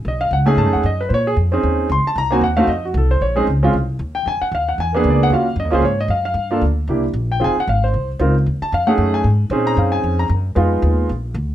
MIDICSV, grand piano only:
0, 0, Header, 1, 2, 480
1, 0, Start_track
1, 0, Key_signature, -5, "minor"
1, 0, Tempo, 262697
1, 95, Time_signature, 4, 2, 24, 8
1, 21102, End_track
2, 0, Start_track
2, 0, Title_t, "Grand piano"
2, 0, Program_c, 0, 0
2, 147, Note_on_c, 0, 75, 76
2, 379, Note_on_c, 0, 77, 86
2, 394, Note_off_c, 0, 75, 0
2, 571, Note_off_c, 0, 77, 0
2, 603, Note_on_c, 0, 78, 78
2, 835, Note_on_c, 0, 57, 70
2, 840, Note_on_c, 0, 61, 68
2, 849, Note_on_c, 0, 80, 83
2, 852, Note_on_c, 0, 63, 70
2, 862, Note_off_c, 0, 78, 0
2, 867, Note_on_c, 0, 68, 85
2, 1046, Note_off_c, 0, 80, 0
2, 1058, Note_on_c, 0, 81, 88
2, 1329, Note_off_c, 0, 81, 0
2, 1334, Note_on_c, 0, 78, 73
2, 1486, Note_off_c, 0, 57, 0
2, 1488, Note_off_c, 0, 61, 0
2, 1494, Note_off_c, 0, 63, 0
2, 1502, Note_off_c, 0, 68, 0
2, 1529, Note_off_c, 0, 78, 0
2, 1567, Note_on_c, 0, 75, 81
2, 1824, Note_off_c, 0, 75, 0
2, 1837, Note_on_c, 0, 71, 75
2, 1990, Note_on_c, 0, 72, 61
2, 2021, Note_off_c, 0, 71, 0
2, 2023, Note_off_c, 0, 72, 0
2, 2083, Note_on_c, 0, 73, 91
2, 2323, Note_off_c, 0, 73, 0
2, 2324, Note_on_c, 0, 68, 85
2, 2436, Note_off_c, 0, 68, 0
2, 2773, Note_on_c, 0, 60, 75
2, 2779, Note_on_c, 0, 61, 66
2, 2795, Note_on_c, 0, 63, 68
2, 2807, Note_on_c, 0, 68, 79
2, 3416, Note_off_c, 0, 60, 0
2, 3419, Note_off_c, 0, 61, 0
2, 3427, Note_off_c, 0, 63, 0
2, 3432, Note_off_c, 0, 68, 0
2, 3505, Note_on_c, 0, 84, 86
2, 3754, Note_off_c, 0, 84, 0
2, 3787, Note_on_c, 0, 81, 90
2, 3958, Note_off_c, 0, 81, 0
2, 3984, Note_on_c, 0, 82, 103
2, 4213, Note_on_c, 0, 58, 76
2, 4234, Note_off_c, 0, 82, 0
2, 4235, Note_on_c, 0, 60, 70
2, 4239, Note_on_c, 0, 63, 67
2, 4240, Note_on_c, 0, 80, 84
2, 4251, Note_on_c, 0, 66, 81
2, 4396, Note_off_c, 0, 58, 0
2, 4407, Note_off_c, 0, 60, 0
2, 4409, Note_off_c, 0, 63, 0
2, 4415, Note_off_c, 0, 66, 0
2, 4424, Note_off_c, 0, 80, 0
2, 4451, Note_on_c, 0, 78, 83
2, 4689, Note_on_c, 0, 77, 90
2, 4701, Note_on_c, 0, 57, 77
2, 4707, Note_off_c, 0, 78, 0
2, 4714, Note_on_c, 0, 60, 69
2, 4724, Note_on_c, 0, 63, 71
2, 4738, Note_on_c, 0, 66, 80
2, 4880, Note_off_c, 0, 57, 0
2, 4886, Note_off_c, 0, 60, 0
2, 4888, Note_off_c, 0, 77, 0
2, 4892, Note_off_c, 0, 63, 0
2, 4899, Note_off_c, 0, 66, 0
2, 4911, Note_on_c, 0, 75, 75
2, 5177, Note_off_c, 0, 75, 0
2, 5211, Note_on_c, 0, 66, 60
2, 5390, Note_off_c, 0, 66, 0
2, 5437, Note_on_c, 0, 69, 70
2, 5681, Note_off_c, 0, 69, 0
2, 5681, Note_on_c, 0, 72, 79
2, 5865, Note_off_c, 0, 72, 0
2, 5881, Note_on_c, 0, 73, 81
2, 6132, Note_on_c, 0, 56, 69
2, 6142, Note_off_c, 0, 73, 0
2, 6148, Note_on_c, 0, 68, 84
2, 6154, Note_on_c, 0, 60, 64
2, 6161, Note_on_c, 0, 61, 64
2, 6169, Note_on_c, 0, 63, 79
2, 6265, Note_off_c, 0, 68, 0
2, 6316, Note_off_c, 0, 56, 0
2, 6327, Note_off_c, 0, 60, 0
2, 6331, Note_off_c, 0, 61, 0
2, 6335, Note_off_c, 0, 63, 0
2, 6627, Note_on_c, 0, 60, 64
2, 6628, Note_on_c, 0, 56, 74
2, 6645, Note_on_c, 0, 61, 69
2, 6656, Note_on_c, 0, 65, 81
2, 6804, Note_off_c, 0, 56, 0
2, 6804, Note_off_c, 0, 60, 0
2, 6813, Note_off_c, 0, 61, 0
2, 6818, Note_off_c, 0, 65, 0
2, 7581, Note_on_c, 0, 79, 80
2, 7775, Note_off_c, 0, 79, 0
2, 7813, Note_on_c, 0, 80, 92
2, 8068, Note_on_c, 0, 78, 87
2, 8070, Note_off_c, 0, 80, 0
2, 8259, Note_off_c, 0, 78, 0
2, 8307, Note_on_c, 0, 77, 87
2, 8557, Note_off_c, 0, 77, 0
2, 8562, Note_on_c, 0, 78, 75
2, 8746, Note_off_c, 0, 78, 0
2, 8775, Note_on_c, 0, 80, 90
2, 9002, Note_on_c, 0, 70, 36
2, 9025, Note_off_c, 0, 70, 0
2, 9031, Note_off_c, 0, 80, 0
2, 9036, Note_on_c, 0, 58, 78
2, 9051, Note_on_c, 0, 59, 76
2, 9066, Note_on_c, 0, 62, 73
2, 9071, Note_on_c, 0, 71, 59
2, 9072, Note_on_c, 0, 68, 85
2, 9242, Note_off_c, 0, 71, 0
2, 9322, Note_on_c, 0, 74, 72
2, 9546, Note_off_c, 0, 74, 0
2, 9561, Note_on_c, 0, 78, 100
2, 9670, Note_off_c, 0, 58, 0
2, 9677, Note_off_c, 0, 59, 0
2, 9685, Note_off_c, 0, 62, 0
2, 9688, Note_off_c, 0, 68, 0
2, 9704, Note_on_c, 0, 58, 58
2, 9725, Note_on_c, 0, 61, 54
2, 9727, Note_off_c, 0, 78, 0
2, 9730, Note_on_c, 0, 65, 50
2, 9739, Note_on_c, 0, 66, 61
2, 9753, Note_on_c, 0, 77, 78
2, 9956, Note_off_c, 0, 58, 0
2, 9966, Note_off_c, 0, 61, 0
2, 9968, Note_off_c, 0, 65, 0
2, 9973, Note_off_c, 0, 66, 0
2, 10176, Note_off_c, 0, 77, 0
2, 10227, Note_on_c, 0, 75, 80
2, 10424, Note_on_c, 0, 58, 73
2, 10438, Note_on_c, 0, 61, 71
2, 10446, Note_on_c, 0, 65, 72
2, 10468, Note_on_c, 0, 68, 82
2, 10478, Note_off_c, 0, 75, 0
2, 10494, Note_on_c, 0, 72, 81
2, 10623, Note_off_c, 0, 58, 0
2, 10630, Note_off_c, 0, 61, 0
2, 10634, Note_off_c, 0, 65, 0
2, 10646, Note_off_c, 0, 68, 0
2, 10673, Note_off_c, 0, 72, 0
2, 10683, Note_on_c, 0, 73, 74
2, 10945, Note_off_c, 0, 73, 0
2, 10973, Note_on_c, 0, 75, 84
2, 11152, Note_on_c, 0, 77, 78
2, 11153, Note_off_c, 0, 75, 0
2, 11398, Note_off_c, 0, 77, 0
2, 11425, Note_on_c, 0, 77, 83
2, 11890, Note_on_c, 0, 58, 69
2, 11901, Note_on_c, 0, 62, 61
2, 11901, Note_on_c, 0, 65, 64
2, 11927, Note_on_c, 0, 69, 74
2, 12056, Note_off_c, 0, 77, 0
2, 12076, Note_off_c, 0, 58, 0
2, 12082, Note_off_c, 0, 62, 0
2, 12082, Note_off_c, 0, 65, 0
2, 12095, Note_off_c, 0, 69, 0
2, 12590, Note_on_c, 0, 58, 56
2, 12597, Note_on_c, 0, 62, 48
2, 12602, Note_on_c, 0, 64, 51
2, 12618, Note_on_c, 0, 67, 63
2, 12838, Note_off_c, 0, 58, 0
2, 12842, Note_off_c, 0, 62, 0
2, 12844, Note_off_c, 0, 64, 0
2, 12853, Note_off_c, 0, 67, 0
2, 13368, Note_on_c, 0, 79, 76
2, 13518, Note_on_c, 0, 60, 63
2, 13522, Note_on_c, 0, 63, 55
2, 13534, Note_on_c, 0, 65, 55
2, 13549, Note_off_c, 0, 79, 0
2, 13550, Note_on_c, 0, 68, 66
2, 13601, Note_on_c, 0, 80, 90
2, 13782, Note_off_c, 0, 60, 0
2, 13784, Note_off_c, 0, 63, 0
2, 13790, Note_off_c, 0, 65, 0
2, 13798, Note_off_c, 0, 68, 0
2, 13844, Note_off_c, 0, 80, 0
2, 13888, Note_on_c, 0, 78, 86
2, 14050, Note_off_c, 0, 78, 0
2, 14056, Note_on_c, 0, 77, 76
2, 14311, Note_off_c, 0, 77, 0
2, 14321, Note_on_c, 0, 72, 72
2, 14758, Note_off_c, 0, 72, 0
2, 14974, Note_on_c, 0, 60, 69
2, 14978, Note_on_c, 0, 63, 55
2, 14993, Note_on_c, 0, 65, 59
2, 15009, Note_on_c, 0, 70, 67
2, 15230, Note_off_c, 0, 60, 0
2, 15231, Note_off_c, 0, 63, 0
2, 15239, Note_off_c, 0, 65, 0
2, 15247, Note_off_c, 0, 70, 0
2, 15754, Note_on_c, 0, 81, 84
2, 15941, Note_off_c, 0, 81, 0
2, 15972, Note_on_c, 0, 77, 82
2, 16205, Note_on_c, 0, 57, 71
2, 16208, Note_on_c, 0, 78, 87
2, 16218, Note_on_c, 0, 61, 65
2, 16228, Note_off_c, 0, 77, 0
2, 16234, Note_on_c, 0, 63, 65
2, 16245, Note_on_c, 0, 68, 78
2, 16659, Note_off_c, 0, 78, 0
2, 16701, Note_on_c, 0, 80, 89
2, 16851, Note_off_c, 0, 57, 0
2, 16858, Note_off_c, 0, 61, 0
2, 16866, Note_off_c, 0, 63, 0
2, 16871, Note_off_c, 0, 68, 0
2, 16893, Note_off_c, 0, 80, 0
2, 17376, Note_on_c, 0, 60, 74
2, 17387, Note_on_c, 0, 61, 66
2, 17394, Note_on_c, 0, 63, 68
2, 17407, Note_on_c, 0, 68, 76
2, 17665, Note_on_c, 0, 82, 102
2, 17855, Note_off_c, 0, 82, 0
2, 17876, Note_on_c, 0, 77, 53
2, 18123, Note_on_c, 0, 80, 87
2, 18138, Note_off_c, 0, 77, 0
2, 18575, Note_off_c, 0, 80, 0
2, 18626, Note_on_c, 0, 82, 90
2, 18694, Note_off_c, 0, 60, 0
2, 18700, Note_off_c, 0, 61, 0
2, 18704, Note_off_c, 0, 63, 0
2, 18710, Note_off_c, 0, 68, 0
2, 18742, Note_off_c, 0, 82, 0
2, 19281, Note_on_c, 0, 56, 64
2, 19291, Note_on_c, 0, 59, 62
2, 19303, Note_on_c, 0, 63, 60
2, 19313, Note_on_c, 0, 65, 71
2, 20246, Note_off_c, 0, 56, 0
2, 20251, Note_off_c, 0, 59, 0
2, 20257, Note_off_c, 0, 63, 0
2, 20262, Note_off_c, 0, 65, 0
2, 21102, End_track
0, 0, End_of_file